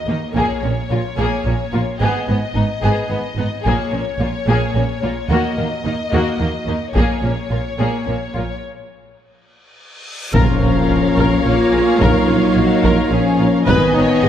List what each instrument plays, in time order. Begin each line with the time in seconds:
Already playing: violin section D#5
0.07 double bass section D#2, cello section D#3, viola section A#3, violin section D#4
0.34 double bass section A#1, cello section A#2, viola section A#3, violin section G#4 C#5, taiko
0.62 double bass section A#1, cello section A#2, viola section A#3, violin section C#4
0.89 double bass section A#1, cello section A#2, viola section A#3, violin section F4
1.17 double bass section A#1, cello section A#2, viola section A#3, violin section G#4
1.45 double bass section A#1, cello section A#2, viola section A#3, violin section C#4
1.73 double bass section A#1, cello section A#2, viola section A#3, violin section F4
2.00 double bass section G#1, cello section G#2, viola section B3, violin section G#4 D#5
2.28 double bass section G#1, cello section G#2, violin section B3, viola section B3
2.55 double bass section G#1, cello section G#2, viola section B3, violin section D#4
2.83 double bass section G#1, cello section G#2, viola section B3, violin section G#4
3.10 double bass section G#1, cello section G#2, violin section B3, viola section B3
3.37 double bass section G#1, cello section G#2, viola section B3, violin section D#4
3.65 double bass section A#1, cello section A#2, viola section A#3, violin section G#4 C#5, taiko
3.92 double bass section A#1, cello section A#2, viola section A#3, violin section C#4
4.19 double bass section A#1, cello section A#2, viola section A#3, violin section F4
4.47 double bass section A#1, cello section A#2, viola section A#3, violin section G#4
4.75 double bass section A#1, cello section A#2, viola section A#3, violin section C#4
5.02 double bass section A#1, cello section A#2, viola section A#3, violin section F4
5.30 double bass section D#2, cello section D#3, viola section A#3, violin section F#4 D#5
5.57 double bass section D#2, cello section D#3, violin section A#3, viola section A#3
5.85 double bass section D#2, cello section D#3, viola section A#3, violin section D#4
6.12 double bass section D#2, cello section D#3, viola section A#3, violin section F#4
6.39 double bass section D#2, cello section D#3, viola section A#3, violin section A#3
6.67 double bass section D#2, cello section D#3, viola section A#3, violin section D#4
6.94 double bass section A#1, cello section A#2, viola section A#3, violin section G#4 C#5, taiko
7.22 double bass section A#1, cello section A#2, viola section A#3, violin section C#4
7.50 double bass section A#1, cello section A#2, viola section A#3, violin section F4
7.79 double bass section A#1, cello section A#2, viola section A#3, violin section G#4
8.06 double bass section A#1, cello section A#2, viola section A#3, violin section C#4
8.34 double bass section A#1, cello section A#2, viola section A#3, violin section F4
8.64 reverse cymbal
10.34 double bass section A#1, tuba A#1, timpani A#2, cello section F3, trombone section A#3 F4, french horn section C#4, violin section F4 F5, viola section A#4 C#5, taiko, impact
10.61 tuba A#1, double bass section A#1, viola section C#4, violin section A#4
10.90 double bass section A#1, tuba A#1, viola section F4
11.17 double bass section A#1, tuba A#1, viola section A#4, taiko
11.44 double bass section A#1, tuba A#1, cello section A#3, viola section C#4, french horn section F4, violin section C#5
11.73 tuba A#1, double bass section A#1, viola section F4, violin section G#4
12.00 double bass section A#1, tuba A#1, cello section F#3, french horn section D#4, viola section A#4, violin section A#4, taiko
12.28 double bass section A#1, tuba A#1, viola section C#4, violin section F4
12.56 double bass section A#1, tuba A#1, viola section F4, violin section F#4
12.83 double bass section A#1, tuba A#1, violin section F4, viola section A#4, taiko
13.11 double bass section A#1, tuba A#1, cello section F3, french horn section C#4, viola section C#4, violin section G#4
13.39 double bass section A#1, tuba A#1, viola section F4, violin section A#4
13.67 tuba G#1, double bass section G#1, cello section D#3, trombone section D#3 B3, french horn section B3, viola section B4 D#5, violin section B4 G#5, taiko
13.94 tuba G#1, double bass section G#1, viola section D#4, violin section C#5
14.22 tuba G#1, double bass section G#1, viola section G#4, violin section D#5